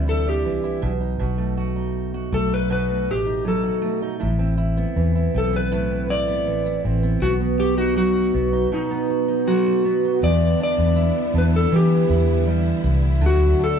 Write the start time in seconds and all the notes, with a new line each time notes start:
Already playing: D2 C3 E3 G3 D4
0.08 E4 A4
0.26 D4 G4
0.45 C2 E3
0.64 E4
0.82 B1 B2
1.01 D#4
1.19 B1 B2 F#4
1.38 A3
1.57 F#4
1.76 D#4
2.14 F#4
2.32 B1 A3 A4
2.51 D#4 B4
2.70 B2 F#4 B4
2.89 A3
3.09 A1 G4
3.27 D#4
3.45 F#3 A4
3.64 F#4
3.82 A3
4.02 D#4
4.20 A1 A2 E4
4.39 C4
4.58 E4
4.77 B3
4.96 E2 E3
5.15 E4
5.34 B1 C4 A4
5.53 B3 B4
5.72 A2 E4
5.91 C4
6.10 E4 D5
6.28 B3
6.47 A1 E3
6.66 E4
6.85 A1 C4
7.03 B3
7.22 B1 B2 F#4
7.41 B3
7.59 F#4 G4
7.77 D#4 F#4
7.96 F#3 F#4
8.15 F#4
8.34 B1 B3
8.53 D#4
8.72 B2 D#4 F#4
8.91 B3
9.10 F#4
9.28 D#4
9.47 F#3 F#4
9.66 F#4
9.85 B3
10.05 D#4
10.20 E2 D3 G3 B3 E4 D5
10.60 D4 D5
10.78 E2
10.96 E4
11.34 E2 D4
11.38 B4
11.56 A4
11.72 E3 G4
12.09 E2 E4
12.47 G3
12.84 C2 E4
13.21 D2 D3 F#3 A3
13.26 F#4
13.59 D4
13.64 A4